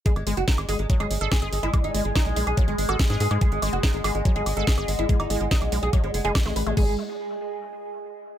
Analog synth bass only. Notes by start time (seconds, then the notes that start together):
0.16 G#1
0.27 G#1
0.37 F#1
0.58 G#1
0.69 G#1
0.79 G#1
1.00 G#1
1.11 G#1
1.21 G#1
1.42 G#1
1.53 G#1
1.63 G#1
1.84 G#1
1.94 G#1
2.05 G#1
2.26 B1
2.36 B1
2.47 B1
2.68 G#1
2.78 G#1
2.89 G#1
3.10 G#2
3.20 G#2
3.31 G#2
3.52 G#1
3.62 G#1
3.73 F#1
3.94 G#1
4.04 G#1
4.15 G#1
4.36 G#1
4.46 G#1
4.57 G#1
4.78 G#1
4.88 G#1
4.99 G#1
5.20 G#1
5.30 G#1
5.41 G#1
5.62 B1
5.72 B1
5.83 B1
6.04 G#1
6.14 F#1
6.25 F#1
6.46 A1
6.56 A1
6.67 A1
6.77 G#1